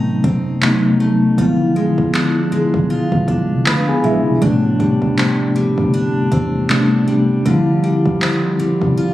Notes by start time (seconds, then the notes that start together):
Already playing: A1 B2 C3 F#3 A3 B3 C4 D#4
0.24 F#2 C4, kick
0.61 C3 F#3 A3 B3 D#4, clap
1.00 A3
1.37 B1 B2 D3 F3 G#3 B3 E4 F4, kick
1.76 G#3
1.98 muted fingered electric bass stroke, kick
2.14 D4, clap
2.52 G#3, muted fingered electric bass stroke
2.74 B1, kick
2.90 F4
3.12 B2, kick
3.28 B1 D4, kick
3.50 C2
3.66 D2 D4 F4 B4 B5, clap
3.89 B3 G#4 G#5
4.04 B1 G#3 E4 E5
4.26 C2 F3 D4
4.41 A1 A2 C3 G3 A3 B3 D4, kick
4.80 G3, kick
5.02 kick
5.18 C4, clap
5.56 G3, muted fingered electric bass stroke
5.78 G1, kick
5.94 D4
6.32 E2 C4, kick
6.69 C3 G3 A3 B3 D4, clap
7.08 G3
7.45 D2 D3 F3 G3 C4 E4 F4, kick
7.84 G3
8.05 muted fingered electric bass stroke, kick
8.21 C4, clap
8.59 G3, muted fingered electric bass stroke
8.82 C2, kick
8.97 F4